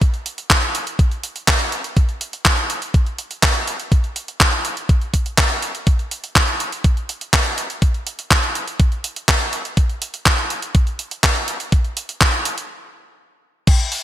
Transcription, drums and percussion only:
0.01 kick, closed hi-hat
0.14 closed hi-hat
0.26 closed hi-hat
0.38 closed hi-hat
0.50 kick, clap, closed hi-hat
0.63 closed hi-hat
0.75 closed hi-hat
0.87 closed hi-hat
0.99 kick, closed hi-hat
1.11 closed hi-hat
1.23 closed hi-hat
1.36 closed hi-hat
1.48 kick, clap, closed hi-hat
1.60 closed hi-hat
1.72 closed hi-hat
1.84 closed hi-hat
1.97 kick, closed hi-hat
2.09 closed hi-hat
2.21 closed hi-hat
2.33 closed hi-hat
2.45 kick, clap, closed hi-hat
2.58 closed hi-hat
2.70 closed hi-hat
2.82 closed hi-hat
2.94 kick, closed hi-hat
3.06 closed hi-hat
3.19 closed hi-hat
3.31 closed hi-hat
3.43 kick, clap, closed hi-hat
3.55 closed hi-hat
3.67 closed hi-hat
3.80 closed hi-hat
3.92 kick, closed hi-hat
4.04 closed hi-hat
4.16 closed hi-hat
4.28 closed hi-hat
4.40 kick, clap, closed hi-hat
4.53 closed hi-hat
4.65 closed hi-hat
4.77 closed hi-hat
4.89 kick, closed hi-hat
5.02 closed hi-hat
5.14 kick, closed hi-hat
5.26 closed hi-hat
5.38 kick, clap, closed hi-hat
5.50 closed hi-hat
5.62 closed hi-hat
5.75 closed hi-hat
5.87 kick, closed hi-hat
5.99 closed hi-hat
6.11 closed hi-hat
6.24 closed hi-hat
6.36 kick, clap, closed hi-hat
6.48 closed hi-hat
6.60 closed hi-hat
6.72 closed hi-hat
6.84 kick, closed hi-hat
6.97 closed hi-hat
7.09 closed hi-hat
7.21 closed hi-hat
7.33 kick, clap, closed hi-hat
7.46 closed hi-hat
7.58 closed hi-hat
7.70 closed hi-hat
7.82 kick, closed hi-hat
7.94 closed hi-hat
8.07 closed hi-hat
8.19 closed hi-hat
8.31 kick, clap, closed hi-hat
8.43 closed hi-hat
8.55 closed hi-hat
8.68 closed hi-hat
8.80 kick, closed hi-hat
8.92 closed hi-hat
9.04 closed hi-hat
9.16 closed hi-hat
9.28 kick, clap
9.41 closed hi-hat
9.53 closed hi-hat
9.65 closed hi-hat
9.77 kick, closed hi-hat
9.89 closed hi-hat
10.02 closed hi-hat
10.14 closed hi-hat
10.26 kick, clap, closed hi-hat
10.38 closed hi-hat
10.50 closed hi-hat
10.62 closed hi-hat
10.75 kick, closed hi-hat
10.87 closed hi-hat
10.99 closed hi-hat
11.11 closed hi-hat
11.24 kick, clap, closed hi-hat
11.36 closed hi-hat
11.48 closed hi-hat
11.60 closed hi-hat
11.72 kick, closed hi-hat
11.85 closed hi-hat
11.97 closed hi-hat
12.09 closed hi-hat
12.21 kick, clap, closed hi-hat
12.33 closed hi-hat
12.45 closed hi-hat
12.58 closed hi-hat
13.67 kick, closed hi-hat, crash
13.80 closed hi-hat
13.92 open hi-hat

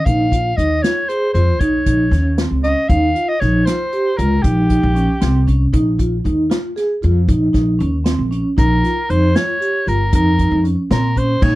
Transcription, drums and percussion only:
0.06 kick, closed hi-hat
0.32 kick, closed hi-hat
0.58 kick, closed hi-hat
0.84 snare, closed hi-hat
1.09 closed hi-hat
1.35 closed hi-hat
1.61 kick, closed hi-hat
1.86 kick, closed hi-hat
2.12 snare, closed hi-hat
2.38 snare, closed hi-hat
2.64 closed hi-hat
2.89 kick, closed hi-hat
3.16 closed hi-hat
3.42 snare, closed hi-hat
3.67 snare, closed hi-hat
3.92 closed hi-hat
4.19 closed hi-hat
4.44 kick, closed hi-hat
4.70 kick, closed hi-hat
4.96 closed hi-hat
5.21 snare, closed hi-hat
5.48 kick, closed hi-hat
5.73 kick, closed hi-hat
5.99 kick, closed hi-hat
6.25 kick, closed hi-hat
6.51 snare, closed hi-hat
6.77 snare, closed hi-hat
7.03 closed hi-hat
7.29 kick, closed hi-hat
7.54 kick, snare, closed hi-hat
7.80 closed hi-hat
8.06 snare, closed hi-hat
8.32 closed hi-hat
8.58 kick, closed hi-hat
8.84 snare, closed hi-hat
9.10 closed hi-hat
9.36 snare, closed hi-hat
9.62 closed hi-hat
9.88 closed hi-hat
10.13 kick, closed hi-hat
10.39 kick, closed hi-hat
10.65 closed hi-hat
10.91 snare, closed hi-hat
11.16 kick, closed hi-hat
11.42 kick, crash

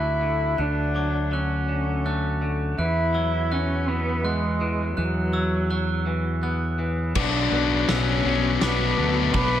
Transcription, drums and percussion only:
7.15 kick, crash
7.89 snare, ride
8.61 snare, ride
9.34 kick, ride

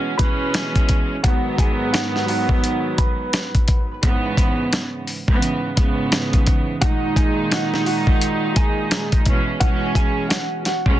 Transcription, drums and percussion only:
0.19 kick, closed hi-hat
0.54 snare, closed hi-hat
0.76 kick, closed hi-hat
0.89 kick, closed hi-hat
1.24 kick, closed hi-hat
1.58 kick, closed hi-hat
1.94 snare, closed hi-hat
2.16 snare
2.28 open hi-hat
2.49 kick
2.64 closed hi-hat
2.98 kick, closed hi-hat
3.33 snare, closed hi-hat
3.55 kick, closed hi-hat
3.68 kick, closed hi-hat
4.03 kick, closed hi-hat
4.37 kick, closed hi-hat
4.73 snare, closed hi-hat
5.07 open hi-hat
5.28 kick
5.42 closed hi-hat
5.77 kick, closed hi-hat
6.12 snare, closed hi-hat
6.33 kick, closed hi-hat
6.46 kick, closed hi-hat
6.82 kick, closed hi-hat
7.16 kick, closed hi-hat
7.51 snare, closed hi-hat
7.74 snare
7.86 open hi-hat
8.07 kick
8.21 closed hi-hat
8.56 kick, closed hi-hat
8.91 snare, closed hi-hat
9.12 kick, closed hi-hat
9.25 kick, closed hi-hat
9.61 kick, closed hi-hat
9.95 kick, closed hi-hat
10.30 snare, closed hi-hat
10.65 snare, closed hi-hat
10.86 kick

